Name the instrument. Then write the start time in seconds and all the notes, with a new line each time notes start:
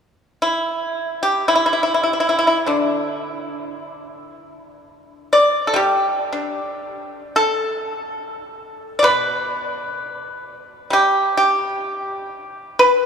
pipa
0.42 E4
1.23 G4
1.48 E4
1.55 E4
1.66 E4
1.73 E4
1.83 E4
1.94 E4
2.03 E4
2.13 E4
2.20 E4
2.29 E4
2.39 E4
2.47 E4
2.66 D3 D4
5.33 D5
5.67 A4
5.74 G3 G4
6.33 D4
7.36 A4
8.99 B2 D5
9.04 B4
10.90 G3 G4
11.37 G4
12.79 B4